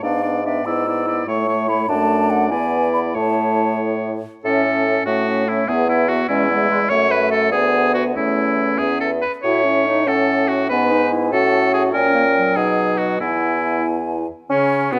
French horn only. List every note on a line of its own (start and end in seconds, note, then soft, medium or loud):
0.02 0.23 B3 soft
0.24 0.44 B3 soft
0.45 0.66 B3 soft
0.67 0.87 B3 soft
0.88 1.08 B3 soft
1.09 1.27 B3 soft
1.27 1.48 A3 soft
1.48 1.69 A3 soft
1.70 1.89 A3 soft
1.90 2.48 A3 soft
2.51 3.17 B3 soft
3.15 4.23 A3 soft
4.44 4.65 C#4 soft
4.65 4.86 C#4 soft
4.86 5.06 C#4 soft
5.07 5.26 C#4 soft
5.27 5.47 C#4 soft
5.48 5.67 C#4 soft
5.68 5.88 B3 soft
5.88 6.08 B3 soft
6.09 6.28 B3 soft
6.29 6.49 G#3 soft
6.50 6.69 G#3 soft
6.70 6.90 G#3 soft
6.91 7.54 A3 medium
7.53 8.15 B3 soft
8.16 8.81 A3 soft
8.79 9.22 B3 soft
9.44 9.63 F#4 soft
9.65 9.87 E4 soft
9.85 10.08 D#4 soft
10.06 10.71 C#4 soft
10.70 11.33 B3 soft
11.32 11.93 C#4 soft
11.94 12.58 C#4 medium
12.56 13.20 D#4 soft
13.20 14.26 E4 soft
14.51 14.94 C#3 medium
14.92 14.99 B2 soft